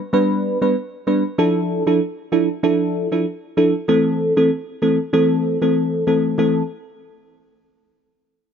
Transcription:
0.13 G3 B3 D4 B4
0.62 G3 B3 D4 B4
1.07 G3 B3 D4 B4
1.38 F3 D4 E4 A4
1.87 F3 D4 E4 A4
2.32 F3 D4 E4 A4
2.63 F3 D4 E4 A4
3.12 F3 D4 E4 A4
3.57 F3 D4 E4 A4
3.88 E3 A3 C4 A4
4.37 E3 A3 C4 A4
4.82 E3 A3 C4 A4
5.13 E3 A3 C4 A4
5.62 E3 A3 C4 A4
6.07 E3 A3 C4 A4
6.38 E3 A3 C4 A4

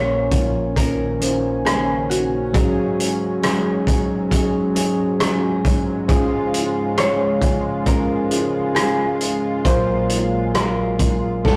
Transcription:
Already playing: A#1 A#2 F3 A#3 C#4 F4 A#4 C#5
0.31 A#3 C#4 F4, kick, closed hi-hat
0.76 D#3 F3 C#4 A#4, kick, closed hi-hat
1.20 F3 A#3 C#4 F4 C5, closed hi-hat
1.65 C#3 A#3 C#4 G#4 A#4, cross-stick, closed hi-hat
2.10 F#4, closed hi-hat
2.53 G#2 C#3 F#3 C#4 D#4 G#4, kick, closed hi-hat
3.00 closed hi-hat
3.42 F#3 C#4 D#4 G#4, cross-stick, closed hi-hat
3.86 F#3 C#4 D#4 G#4, kick, closed hi-hat
4.31 F#3 C#4 G#4, kick, closed hi-hat
4.75 F#3 C#4 D#4 G#4, closed hi-hat
5.19 F#3 C#4 D#4 F4 G#4, cross-stick, closed hi-hat
5.27 F#4
5.65 kick, closed hi-hat
6.08 G#2 C#3 F3 G#3 C#4 F4 G#4, kick, closed hi-hat
6.54 closed hi-hat
6.96 F3 G#3 C#4 F4 G#4 C#5, cross-stick, closed hi-hat
7.40 F3 G#3 C#4 F4, kick, closed hi-hat
7.86 F3 C#4 A#4, kick, closed hi-hat
8.30 F3 G#3 C#4 F4 G#4, closed hi-hat
8.75 F3 G#3 C#4 F4 G#4, cross-stick, closed hi-hat
9.21 closed hi-hat
9.64 A#1 A#2 F#3 A#3 C#4 F4 A#4 C5, kick, closed hi-hat
10.09 closed hi-hat
10.54 F#3 A#3 C#4 F4 A#4, cross-stick, closed hi-hat
10.99 A#3 C#4 F4, kick, closed hi-hat
11.44 F2 C3 D#3 F3 A3 D#4 F4 A4, kick, snare

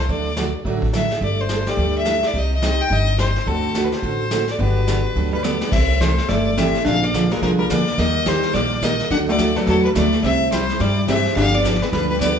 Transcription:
0.09 D2 D3 F#3 A3 D4 F#4 D5, brush sweep, kick
0.36 D3 F#3 A3 D4 F#4, snare, hi-hat pedal
0.65 A1 D3 F#3 A3 D4 F#4, brush sweep, kick
0.82 kick
0.93 D3 F#3 A3 D4 F#4 E5, snare, hi-hat pedal
1.10 snare
1.21 G1 G3 A3 D4 A4 D5, brush sweep, kick
1.41 C5
1.49 G3 A3 D4 A4, snare, hi-hat pedal
1.66 G3 A3 D4 G4 D5, snare
1.77 D2 G3 A3 D4 A4, brush sweep, kick
1.98 E5
2.05 G3 A3 D4 A4, snare, hi-hat pedal
2.23 D5, snare
2.34 C2 C3 G3 C4 D#4 G4, brush sweep, kick
2.38 D#5
2.54 D#5
2.62 C3 G3 C4 D#4 G4, snare, hi-hat pedal
2.81 G5
2.90 G1 C3 G3 C4 D#4 G4 D#5, brush sweep, kick
3.18 C3 G3 C4 D#4 G4 C5, snare, hi-hat pedal
3.36 snare
3.46 D2 D3 A3 C4 D4 F#4 A4, brush sweep, kick
3.75 D3 A3 C4 F#4 A4, snare, hi-hat pedal
3.84 B4
3.92 C5, snare
4.03 A1 D3 A3 C4 F#4 A4, brush sweep, kick
4.31 D3 A3 C4 F#4 A4, snare, hi-hat pedal
4.48 D5, snare
4.58 G1 D3 F#3 G3 B3 D4 F#4 G4 B4, brush sweep, kick
4.87 D3 F#3 B3 D4 G4, snare, hi-hat pedal
5.16 D2 D3 F#3 B3 D4 G4, brush sweep, kick
5.33 G3 B4
5.43 D3 F#3 B3 D4 G4 D5, snare, hi-hat pedal
5.61 snare
5.72 C2 C3 E3 G3 C4 E4 A4 E5, brush sweep, kick, snare, crash
6.00 C3 E3 G3 A3 C4 E4 A4 C5, kick, snare, hi-hat pedal
6.18 snare
6.28 G1 C3 E3 G3 A3 C4 E4 A4 D5, brush sweep, kick, snare
6.57 C3 E3 G3 A3 C4 E4 G4 A4 E5, kick, snare, hi-hat pedal
6.75 snare
6.86 A#1 D3 F3 A#3 D4 G#4 F5, brush sweep, kick, snare
7.02 A#3 D5
7.14 D3 F3 A#3 D4 G#4, kick, snare, hi-hat pedal
7.31 G3 G#3 A#3 D4 F4 G#4 A#4, snare
7.42 C2 D3 F3 A#3 D4 G#4 A#4, brush sweep, kick, snare
7.59 G3 A#4
7.70 D2 D3 F3 A#3 D4 G#4 D5, kick, snare, hi-hat pedal
7.87 snare
7.98 D#2 D#3 G3 A#3 D#4 G4 D#5, brush sweep, kick, snare
8.26 D#3 G3 A#3 D#4 G4 A#4 C5, kick, snare, hi-hat pedal
8.43 snare
8.54 A#1 D#3 G3 A#3 D#4 G4 D5, brush sweep, kick, snare
8.82 D#3 G3 A#3 D#4 G4 D#5, kick, snare, hi-hat pedal
8.99 snare
9.10 D2 D3 F#3 A3 D4 F#4 F#5, brush sweep, kick, snare
9.28 F#3 A3 D4 F#4 A4 D5
9.38 D3 F#3 A3 D4 F#4, kick, snare, hi-hat pedal
9.56 F#3 A3 D4 F#4 A4 B4, snare
9.67 E2 D3 F#3 A3 D4 F#4 A4, brush sweep, kick, snare
9.84 G3 B4
9.95 D2 D3 F#3 A3 D4 F#4 D5, kick, snare, hi-hat pedal
10.12 snare
10.23 C2 C3 G3 C4 E4 G4 E5, brush sweep, kick, snare
10.52 C3 G3 C4 E4 G4 C5, kick, snare, hi-hat pedal
10.69 snare
10.80 G2 C3 G3 C4 E4 G4 D5, brush sweep, kick, snare
11.08 C3 E3 G3 C4 E4 G4 E5, kick, snare, hi-hat pedal
11.25 snare
11.36 G1 D3 F3 G3 B3 D4 F4 G4 F5, brush sweep, kick, snare
11.54 B3 D5
11.64 D3 F3 B3 D4 G4, kick, snare, hi-hat pedal
11.74 snare
11.82 G3 B4, snare
11.92 D2 D3 F3 G3 B3 D4 G4 B4, brush sweep, kick, snare
12.09 G3 B4
12.20 D3 F3 B3 D4 G4 D5, kick, snare, hi-hat pedal

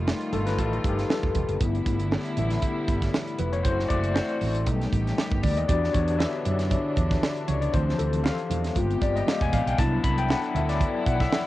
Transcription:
Already playing: F1 D#3 G3 A3 D#4 F4
0.07 snare, high conga
0.21 closed hi-hat
0.33 G1 A4, closed hi-hat, low conga
0.46 B4, snare, closed hi-hat
0.58 A1 A4, kick, closed hi-hat, muted conga
0.73 closed hi-hat
0.84 G1 G4, kick, closed hi-hat, muted conga
0.99 snare, closed hi-hat
1.10 A4, snare, high conga
1.23 F1, kick
1.35 F1, kick, closed hi-hat, high conga
1.49 F#1, closed hi-hat
1.60 G1 D3 G3 A3 B3 E4, kick, closed hi-hat, muted conga
1.75 closed hi-hat
1.86 G1, kick, closed hi-hat
2.00 closed hi-hat
2.11 snare, high conga
2.25 closed hi-hat
2.37 A1 A3 B3 E4, closed hi-hat, low conga
2.51 snare, closed hi-hat
2.62 kick, closed hi-hat, muted conga
2.88 G1, kick, closed hi-hat, muted conga
3.02 kick, snare, closed hi-hat
3.14 snare, high conga
3.28 closed hi-hat
3.39 F1 B4, closed hi-hat, high conga
3.53 C#5, closed hi-hat
3.63 F#1 E3 A3 C4 E4 F#4 C5, kick, closed hi-hat, muted conga
3.79 snare
3.89 F#1 D5, kick, closed hi-hat
4.04 closed hi-hat
4.14 C5, snare, high conga
4.29 closed hi-hat
4.41 A1, open hi-hat, low conga
4.55 closed hi-hat
4.66 B1 D#3 G3 A3 B3 D#4 G4, kick, closed hi-hat, muted conga
4.81 snare, closed hi-hat
4.92 A1, kick, closed hi-hat, muted conga
5.07 snare, closed hi-hat
5.18 snare, high conga
5.32 G1, kick
5.43 D2 D5, kick, open hi-hat, high conga
5.57 D#2 D#5, closed hi-hat
5.68 E2 D3 E3 D4 F#4 G4 D5, kick, closed hi-hat, muted conga
5.84 snare
5.93 E2 C#5, kick, closed hi-hat, muted conga
6.08 closed hi-hat
6.19 E5, snare, high conga
6.45 F#2, closed hi-hat, low conga
6.59 snare, closed hi-hat
6.70 kick, closed hi-hat, muted conga
6.96 E2, kick, closed hi-hat, muted conga
7.11 kick, snare, closed hi-hat
7.22 snare, high conga
7.37 closed hi-hat
7.48 C#2 C#5, closed hi-hat, high conga
7.61 D5, closed hi-hat
7.73 D2 C3 E3 F3 C4 C5, kick, closed hi-hat, muted conga
7.89 snare
7.98 D2 A4, closed hi-hat, muted conga
8.13 closed hi-hat
8.24 F5, snare, high conga
8.39 closed hi-hat
8.50 E2, closed hi-hat, low conga
8.64 snare, closed hi-hat
8.75 G1 G#3 B3 F4 G4, kick, closed hi-hat, muted conga
8.91 closed hi-hat
9.01 G1 D5, kick, closed hi-hat, muted conga
9.16 D#5, closed hi-hat
9.27 F5, snare, high conga
9.41 F1 G#5, kick, closed hi-hat
9.53 A#1 F5, kick, closed hi-hat, high conga
9.66 B1 G5, closed hi-hat
9.78 C2 D3 F#3 B3 D4 E4 A5, kick, closed hi-hat, muted conga
10.04 C2 B5, kick, closed hi-hat
10.18 G5, closed hi-hat
10.29 F#5, snare, high conga
10.44 closed hi-hat
10.55 D2 E5, closed hi-hat, low conga
10.69 D5, snare, closed hi-hat
10.80 kick, closed hi-hat, muted conga
11.06 B1 F#5, kick, closed hi-hat, muted conga
11.20 E5, kick, snare, closed hi-hat
11.32 snare, high conga

